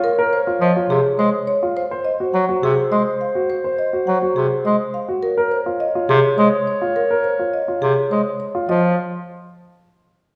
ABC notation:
X:1
M:3/4
L:1/16
Q:1/4=104
K:Bbm
V:1 name="Clarinet"
d8- d3 z | c12- | c8- c3 z | d12- |
d8- d3 z | z12 |]
V:2 name="Marimba"
B z c z e z A z c z d z | c z e z g z A z e z f z | c z e z g z A z e z f z | B z c z e z A z c z d z |
B z c z e z A z c z d z | e2 z8 z2 |]
V:3 name="Grand piano"
z B z F z F z4 z F | z c z G z G z4 z G | z c z G z G z4 z G | z B z F z F z4 z F |
z B z F z F z4 z F | F2 z8 z2 |]
V:4 name="Bass clarinet" clef=bass
z4 F, z C, z A, z3 | z4 G, z C, z A, z3 | z4 G, z C, z A, z3 | z6 C, z A, z3 |
z6 C, z A, z3 | F,2 z8 z2 |]